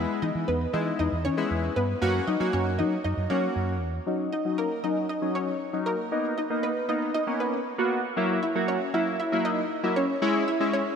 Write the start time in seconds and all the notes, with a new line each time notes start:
Already playing: G#3 B3 E4
0.22 E3 D#4 D#5
0.35 E3
0.48 E2 B3 B4
0.73 E3 G#3 B3 D#4 E4 D#5
0.99 E2 D#4 D#5
1.12 E2
1.25 E3 C#4 C#5
1.37 G#3 B3 E4
1.50 E2
1.76 G2 B3 B4
2.01 F#2 A#3 C#4 F#4
2.27 F#3 D#4 D#5
2.40 F#3 A#3 C#4 F#4
2.53 F#2 C#4 C#5
2.79 F#3 D#4 D#5
3.04 F#2 D#4 D#5
3.17 F#2
3.30 F#3 A#3 C#4 F#4 C#5
3.56 F#2
3.81 E2
4.07 F#3 C#4 D#4
4.33 D#4 D#5
4.45 F#3 C#4 D#4
4.58 A#3 A#4
4.84 F#3 C#4 D#4 D#5
5.09 D#4 D#5
5.22 F#3 C#4 D#4
5.35 C#4 C#5
5.73 F#3 C#4 D#4
5.86 A#3 A#4
6.12 A#3 B3 D#4
6.38 D#4 D#5
6.50 A#3 B3 D#4
6.63 B3 B4
6.88 A#3 B3 D#4 D#5
7.14 D#4 D#5
7.27 A#3 B3 C#4
7.40 B3 B4
7.78 A#3 B3 F#4
8.17 F#3 A#3 E4
8.43 E4 E5
8.55 F#3 A#3 F#4
8.68 C#4 C#5
8.94 F#3 A#3 E4 E5
9.20 E4 E5
9.32 F#3 A#3 E4
9.45 D#4 D#5
9.83 F#3 A#3 E4
9.96 C#4 C#5
10.22 G#3 C#4 E4
10.48 E4 E5
10.60 G#3 C#4 E4
10.73 C#4 C#5